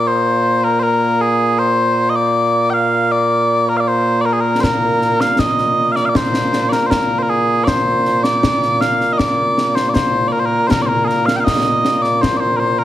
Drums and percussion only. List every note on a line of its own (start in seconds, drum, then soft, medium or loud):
4.63 concert bass drum medium
4.63 snare medium
5.01 snare soft
5.21 snare medium
5.39 concert bass drum medium
5.39 snare medium
5.58 snare soft
5.96 snare soft
6.15 concert bass drum medium
6.15 snare loud
6.34 snare medium
6.53 snare medium
6.72 snare medium
6.91 concert bass drum soft
6.91 snare medium
7.67 concert bass drum medium
7.67 snare medium
8.05 snare soft
8.24 snare medium
8.43 concert bass drum medium
8.43 snare medium
8.62 snare soft
8.81 snare medium
9.01 snare soft
9.19 concert bass drum medium
9.19 snare medium
9.58 snare medium
9.76 snare medium
9.95 concert bass drum medium
9.95 snare loud
10.71 concert bass drum medium
10.71 snare loud
11.09 snare soft
11.28 snare medium
11.47 concert bass drum medium
11.47 snare loud
11.66 snare soft
11.85 snare medium
12.04 snare soft
12.23 concert bass drum medium
12.23 snare medium